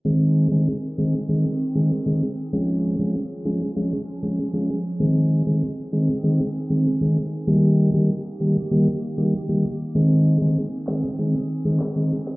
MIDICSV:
0, 0, Header, 1, 4, 480
1, 0, Start_track
1, 0, Key_signature, -4, "major"
1, 0, Tempo, 618557
1, 40, Time_signature, 4, 2, 24, 8
1, 9597, End_track
2, 0, Start_track
2, 0, Title_t, "Ambient pad"
2, 0, Program_c, 0, 92
2, 40, Note_on_c, 0, 51, 76
2, 40, Note_on_c, 0, 60, 72
2, 40, Note_on_c, 0, 68, 86
2, 1941, Note_off_c, 0, 51, 0
2, 1941, Note_off_c, 0, 60, 0
2, 1960, Note_on_c, 0, 53, 77
2, 1960, Note_on_c, 0, 61, 73
2, 3861, Note_off_c, 0, 53, 0
2, 3861, Note_off_c, 0, 61, 0
2, 3879, Note_on_c, 0, 60, 69
2, 3880, Note_on_c, 0, 51, 77
2, 5769, Note_off_c, 0, 68, 0
2, 5781, Note_off_c, 0, 60, 0
2, 5800, Note_on_c, 0, 58, 72
2, 5800, Note_on_c, 0, 67, 88
2, 7701, Note_off_c, 0, 58, 0
2, 7701, Note_off_c, 0, 67, 0
2, 7721, Note_on_c, 0, 60, 70
2, 7721, Note_on_c, 0, 68, 83
2, 9597, Note_off_c, 0, 51, 0
2, 9597, Note_off_c, 0, 60, 0
2, 9597, Note_off_c, 0, 68, 0
2, 9597, End_track
3, 0, Start_track
3, 0, Title_t, "Tonewheel organ"
3, 0, Program_c, 1, 16
3, 38, Note_on_c, 1, 51, 90
3, 40, Note_on_c, 1, 56, 83
3, 41, Note_on_c, 1, 60, 82
3, 43, Note_on_c, 1, 68, 100
3, 370, Note_off_c, 1, 51, 0
3, 371, Note_off_c, 1, 56, 0
3, 372, Note_off_c, 1, 60, 0
3, 373, Note_off_c, 1, 68, 0
3, 398, Note_on_c, 1, 51, 73
3, 400, Note_on_c, 1, 56, 67
3, 401, Note_on_c, 1, 60, 67
3, 403, Note_on_c, 1, 68, 82
3, 526, Note_off_c, 1, 51, 0
3, 527, Note_off_c, 1, 56, 0
3, 528, Note_off_c, 1, 60, 0
3, 528, Note_off_c, 1, 68, 0
3, 759, Note_on_c, 1, 51, 73
3, 761, Note_on_c, 1, 56, 68
3, 762, Note_on_c, 1, 60, 66
3, 763, Note_on_c, 1, 68, 79
3, 886, Note_off_c, 1, 51, 0
3, 887, Note_off_c, 1, 56, 0
3, 888, Note_off_c, 1, 60, 0
3, 889, Note_off_c, 1, 68, 0
3, 998, Note_on_c, 1, 51, 85
3, 1000, Note_on_c, 1, 56, 80
3, 1002, Note_on_c, 1, 60, 81
3, 1003, Note_on_c, 1, 68, 89
3, 1126, Note_off_c, 1, 51, 0
3, 1127, Note_off_c, 1, 56, 0
3, 1128, Note_off_c, 1, 60, 0
3, 1128, Note_off_c, 1, 68, 0
3, 1359, Note_on_c, 1, 51, 72
3, 1360, Note_on_c, 1, 56, 66
3, 1362, Note_on_c, 1, 60, 65
3, 1364, Note_on_c, 1, 68, 80
3, 1486, Note_off_c, 1, 51, 0
3, 1487, Note_off_c, 1, 56, 0
3, 1488, Note_off_c, 1, 60, 0
3, 1489, Note_off_c, 1, 68, 0
3, 1599, Note_on_c, 1, 51, 72
3, 1600, Note_on_c, 1, 56, 63
3, 1602, Note_on_c, 1, 60, 67
3, 1603, Note_on_c, 1, 68, 79
3, 1726, Note_off_c, 1, 51, 0
3, 1727, Note_off_c, 1, 56, 0
3, 1728, Note_off_c, 1, 60, 0
3, 1728, Note_off_c, 1, 68, 0
3, 1960, Note_on_c, 1, 53, 94
3, 1961, Note_on_c, 1, 56, 88
3, 1963, Note_on_c, 1, 61, 82
3, 1964, Note_on_c, 1, 68, 103
3, 2291, Note_off_c, 1, 53, 0
3, 2292, Note_off_c, 1, 56, 0
3, 2293, Note_off_c, 1, 61, 0
3, 2293, Note_off_c, 1, 68, 0
3, 2319, Note_on_c, 1, 53, 74
3, 2321, Note_on_c, 1, 56, 68
3, 2322, Note_on_c, 1, 61, 69
3, 2324, Note_on_c, 1, 68, 80
3, 2447, Note_off_c, 1, 53, 0
3, 2447, Note_off_c, 1, 56, 0
3, 2448, Note_off_c, 1, 61, 0
3, 2449, Note_off_c, 1, 68, 0
3, 2678, Note_on_c, 1, 53, 73
3, 2680, Note_on_c, 1, 56, 62
3, 2682, Note_on_c, 1, 61, 63
3, 2683, Note_on_c, 1, 68, 81
3, 2806, Note_off_c, 1, 53, 0
3, 2807, Note_off_c, 1, 56, 0
3, 2808, Note_off_c, 1, 61, 0
3, 2808, Note_off_c, 1, 68, 0
3, 2918, Note_on_c, 1, 53, 83
3, 2920, Note_on_c, 1, 56, 76
3, 2922, Note_on_c, 1, 61, 78
3, 2923, Note_on_c, 1, 68, 97
3, 3046, Note_off_c, 1, 53, 0
3, 3047, Note_off_c, 1, 56, 0
3, 3048, Note_off_c, 1, 61, 0
3, 3049, Note_off_c, 1, 68, 0
3, 3279, Note_on_c, 1, 53, 70
3, 3281, Note_on_c, 1, 56, 62
3, 3282, Note_on_c, 1, 61, 69
3, 3284, Note_on_c, 1, 68, 78
3, 3406, Note_off_c, 1, 53, 0
3, 3407, Note_off_c, 1, 56, 0
3, 3408, Note_off_c, 1, 61, 0
3, 3409, Note_off_c, 1, 68, 0
3, 3519, Note_on_c, 1, 53, 72
3, 3520, Note_on_c, 1, 56, 66
3, 3522, Note_on_c, 1, 61, 67
3, 3523, Note_on_c, 1, 68, 82
3, 3646, Note_off_c, 1, 53, 0
3, 3647, Note_off_c, 1, 56, 0
3, 3648, Note_off_c, 1, 61, 0
3, 3648, Note_off_c, 1, 68, 0
3, 3878, Note_on_c, 1, 51, 91
3, 3880, Note_on_c, 1, 56, 84
3, 3880, Note_on_c, 1, 60, 84
3, 3882, Note_on_c, 1, 68, 101
3, 4210, Note_off_c, 1, 51, 0
3, 4211, Note_off_c, 1, 56, 0
3, 4212, Note_off_c, 1, 60, 0
3, 4213, Note_off_c, 1, 68, 0
3, 4237, Note_on_c, 1, 51, 75
3, 4239, Note_on_c, 1, 56, 68
3, 4240, Note_on_c, 1, 60, 68
3, 4242, Note_on_c, 1, 68, 81
3, 4365, Note_off_c, 1, 51, 0
3, 4366, Note_off_c, 1, 56, 0
3, 4367, Note_off_c, 1, 60, 0
3, 4368, Note_off_c, 1, 68, 0
3, 4598, Note_on_c, 1, 51, 71
3, 4599, Note_on_c, 1, 56, 66
3, 4601, Note_on_c, 1, 60, 67
3, 4602, Note_on_c, 1, 68, 77
3, 4726, Note_off_c, 1, 51, 0
3, 4727, Note_off_c, 1, 56, 0
3, 4727, Note_off_c, 1, 60, 0
3, 4728, Note_off_c, 1, 68, 0
3, 4838, Note_on_c, 1, 51, 85
3, 4839, Note_on_c, 1, 56, 80
3, 4840, Note_on_c, 1, 60, 80
3, 4842, Note_on_c, 1, 68, 94
3, 4966, Note_off_c, 1, 51, 0
3, 4966, Note_off_c, 1, 56, 0
3, 4967, Note_off_c, 1, 60, 0
3, 4968, Note_off_c, 1, 68, 0
3, 5198, Note_on_c, 1, 51, 73
3, 5200, Note_on_c, 1, 56, 66
3, 5201, Note_on_c, 1, 60, 65
3, 5202, Note_on_c, 1, 68, 81
3, 5326, Note_off_c, 1, 51, 0
3, 5327, Note_off_c, 1, 56, 0
3, 5327, Note_off_c, 1, 60, 0
3, 5328, Note_off_c, 1, 68, 0
3, 5438, Note_on_c, 1, 51, 69
3, 5439, Note_on_c, 1, 56, 66
3, 5441, Note_on_c, 1, 60, 66
3, 5443, Note_on_c, 1, 68, 81
3, 5566, Note_off_c, 1, 51, 0
3, 5567, Note_off_c, 1, 56, 0
3, 5568, Note_off_c, 1, 60, 0
3, 5568, Note_off_c, 1, 68, 0
3, 5798, Note_on_c, 1, 51, 92
3, 5800, Note_on_c, 1, 55, 84
3, 5801, Note_on_c, 1, 58, 85
3, 5803, Note_on_c, 1, 67, 102
3, 6130, Note_off_c, 1, 51, 0
3, 6131, Note_off_c, 1, 55, 0
3, 6132, Note_off_c, 1, 58, 0
3, 6133, Note_off_c, 1, 67, 0
3, 6158, Note_on_c, 1, 51, 76
3, 6160, Note_on_c, 1, 55, 70
3, 6162, Note_on_c, 1, 58, 69
3, 6163, Note_on_c, 1, 67, 84
3, 6286, Note_off_c, 1, 51, 0
3, 6287, Note_off_c, 1, 55, 0
3, 6288, Note_off_c, 1, 58, 0
3, 6289, Note_off_c, 1, 67, 0
3, 6519, Note_on_c, 1, 51, 71
3, 6521, Note_on_c, 1, 55, 63
3, 6523, Note_on_c, 1, 58, 67
3, 6524, Note_on_c, 1, 67, 78
3, 6646, Note_off_c, 1, 51, 0
3, 6647, Note_off_c, 1, 55, 0
3, 6648, Note_off_c, 1, 58, 0
3, 6649, Note_off_c, 1, 67, 0
3, 6760, Note_on_c, 1, 51, 87
3, 6762, Note_on_c, 1, 55, 76
3, 6763, Note_on_c, 1, 58, 76
3, 6765, Note_on_c, 1, 67, 91
3, 6887, Note_off_c, 1, 51, 0
3, 6888, Note_off_c, 1, 55, 0
3, 6888, Note_off_c, 1, 58, 0
3, 6889, Note_off_c, 1, 67, 0
3, 7119, Note_on_c, 1, 51, 72
3, 7121, Note_on_c, 1, 55, 65
3, 7122, Note_on_c, 1, 58, 65
3, 7124, Note_on_c, 1, 67, 77
3, 7247, Note_off_c, 1, 51, 0
3, 7247, Note_off_c, 1, 55, 0
3, 7248, Note_off_c, 1, 58, 0
3, 7249, Note_off_c, 1, 67, 0
3, 7360, Note_on_c, 1, 51, 72
3, 7361, Note_on_c, 1, 55, 62
3, 7362, Note_on_c, 1, 58, 62
3, 7364, Note_on_c, 1, 67, 80
3, 7487, Note_off_c, 1, 51, 0
3, 7487, Note_off_c, 1, 55, 0
3, 7488, Note_off_c, 1, 58, 0
3, 7489, Note_off_c, 1, 67, 0
3, 7719, Note_on_c, 1, 51, 90
3, 7720, Note_on_c, 1, 56, 83
3, 7722, Note_on_c, 1, 60, 84
3, 7724, Note_on_c, 1, 68, 106
3, 8051, Note_off_c, 1, 51, 0
3, 8052, Note_off_c, 1, 56, 0
3, 8052, Note_off_c, 1, 60, 0
3, 8053, Note_off_c, 1, 68, 0
3, 8080, Note_on_c, 1, 51, 77
3, 8081, Note_on_c, 1, 56, 66
3, 8082, Note_on_c, 1, 60, 71
3, 8085, Note_on_c, 1, 68, 80
3, 8207, Note_off_c, 1, 51, 0
3, 8208, Note_off_c, 1, 56, 0
3, 8208, Note_off_c, 1, 60, 0
3, 8209, Note_off_c, 1, 68, 0
3, 8439, Note_on_c, 1, 51, 70
3, 8441, Note_on_c, 1, 56, 66
3, 8442, Note_on_c, 1, 60, 67
3, 8443, Note_on_c, 1, 68, 80
3, 8566, Note_off_c, 1, 51, 0
3, 8567, Note_off_c, 1, 56, 0
3, 8568, Note_off_c, 1, 60, 0
3, 8569, Note_off_c, 1, 68, 0
3, 8679, Note_on_c, 1, 51, 87
3, 8681, Note_on_c, 1, 56, 79
3, 8681, Note_on_c, 1, 60, 80
3, 8683, Note_on_c, 1, 68, 94
3, 8806, Note_off_c, 1, 51, 0
3, 8807, Note_off_c, 1, 56, 0
3, 8808, Note_off_c, 1, 60, 0
3, 8809, Note_off_c, 1, 68, 0
3, 9039, Note_on_c, 1, 51, 74
3, 9040, Note_on_c, 1, 56, 65
3, 9042, Note_on_c, 1, 60, 67
3, 9043, Note_on_c, 1, 68, 80
3, 9166, Note_off_c, 1, 51, 0
3, 9167, Note_off_c, 1, 56, 0
3, 9168, Note_off_c, 1, 60, 0
3, 9169, Note_off_c, 1, 68, 0
3, 9279, Note_on_c, 1, 51, 69
3, 9280, Note_on_c, 1, 56, 69
3, 9282, Note_on_c, 1, 60, 67
3, 9283, Note_on_c, 1, 68, 80
3, 9406, Note_off_c, 1, 51, 0
3, 9407, Note_off_c, 1, 56, 0
3, 9408, Note_off_c, 1, 60, 0
3, 9409, Note_off_c, 1, 68, 0
3, 9597, End_track
4, 0, Start_track
4, 0, Title_t, "Drums"
4, 8437, Note_on_c, 9, 39, 93
4, 8440, Note_on_c, 9, 38, 117
4, 8515, Note_off_c, 9, 39, 0
4, 8518, Note_off_c, 9, 38, 0
4, 9158, Note_on_c, 9, 39, 90
4, 9161, Note_on_c, 9, 38, 107
4, 9236, Note_off_c, 9, 39, 0
4, 9239, Note_off_c, 9, 38, 0
4, 9521, Note_on_c, 9, 38, 63
4, 9597, Note_off_c, 9, 38, 0
4, 9597, End_track
0, 0, End_of_file